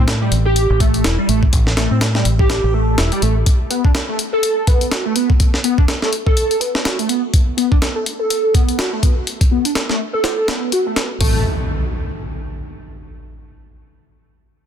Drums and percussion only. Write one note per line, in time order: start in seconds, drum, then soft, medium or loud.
0.08 snare loud
0.08 closed hi-hat medium
0.32 closed hi-hat medium
0.56 closed hi-hat medium
0.80 kick medium
0.80 closed hi-hat medium
0.94 closed hi-hat soft
1.04 snare loud
1.04 closed hi-hat medium
1.29 closed hi-hat medium
1.43 kick medium
1.53 kick loud
1.53 closed hi-hat medium
1.67 snare soft
1.77 snare loud
1.77 closed hi-hat medium
2.01 snare loud
2.01 closed hi-hat medium
2.15 snare soft
2.25 closed hi-hat medium
2.39 kick loud
2.50 snare loud
2.50 closed hi-hat medium
2.98 snare loud
2.98 closed hi-hat medium
3.12 closed hi-hat soft
3.22 closed hi-hat medium
3.46 kick loud
3.46 closed hi-hat medium
3.71 closed hi-hat medium
3.85 kick medium
3.95 snare loud
3.95 closed hi-hat medium
4.19 closed hi-hat medium
4.43 closed hi-hat medium
4.67 kick medium
4.67 closed hi-hat medium
4.81 closed hi-hat soft
4.91 snare loud
4.91 closed hi-hat medium
5.16 closed hi-hat medium
5.30 kick medium
5.40 kick loud
5.40 closed hi-hat medium
5.54 snare soft
5.64 closed hi-hat medium
5.78 kick loud
5.88 snare loud
5.88 closed hi-hat medium
6.02 snare medium
6.13 closed hi-hat medium
6.27 kick loud
6.37 closed hi-hat medium
6.51 closed hi-hat soft
6.61 closed hi-hat medium
6.75 snare medium
6.85 snare loud
6.85 closed hi-hat medium
6.99 closed hi-hat soft
7.09 closed hi-hat medium
7.34 kick loud
7.34 closed hi-hat medium
7.58 closed hi-hat medium
7.72 kick medium
7.82 snare loud
7.82 closed hi-hat medium
8.06 closed hi-hat medium
8.30 closed hi-hat medium
8.54 kick medium
8.54 closed hi-hat medium
8.69 closed hi-hat soft
8.79 snare loud
8.79 closed hi-hat medium
9.03 kick loud
9.03 closed hi-hat medium
9.27 closed hi-hat medium
9.41 kick loud
9.41 closed hi-hat medium
9.65 closed hi-hat medium
9.75 snare loud
9.75 closed hi-hat medium
9.89 snare soft
10.24 snare loud
10.24 closed hi-hat medium
10.48 snare loud
10.48 closed hi-hat medium
10.72 closed hi-hat medium
10.96 snare loud
10.96 closed hi-hat medium
11.21 kick loud
11.21 open hi-hat medium